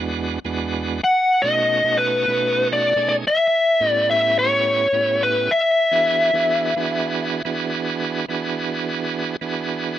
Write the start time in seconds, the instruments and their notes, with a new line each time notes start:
Already playing: tonewheel organ E2 G#3 B3 D4 F#4
0.45 tonewheel organ E2 G#3 B3 D4 F#4
1.04 lead electric guitar F#5
1.42 tonewheel organ B2 A3 C#4 D#4 F#4, lead electric guitar D#5
1.84 tonewheel organ B2 A3 C#4 D#4 F#4
1.97 lead electric guitar B4
2.28 tonewheel organ B2 A3 C#4 D#4 F#4
2.73 lead electric guitar D5
2.96 tonewheel organ B2 A3 C#4 D#4 G#4
3.09 lead electric guitar D5
3.27 lead electric guitar E5
3.80 tonewheel organ A2 B3 C#4 E4 G4
3.89 lead electric guitar D5
4.11 lead electric guitar E5
4.39 lead electric guitar C#5
4.92 tonewheel organ A2 B3 C#4 E4 G4
5.23 lead electric guitar B4
5.51 lead electric guitar E5
5.91 tonewheel organ E3 B3 D4 F#4 G#4
6.33 tonewheel organ E3 B3 D4 F#4 G#4
6.76 tonewheel organ E3 B3 D4 F#4 G#4
7.45 tonewheel organ E3 B3 D4 F#4 G#4
8.28 tonewheel organ E3 B3 D4 F#4 G#4
9.41 tonewheel organ E3 B3 D4 F#4 G#4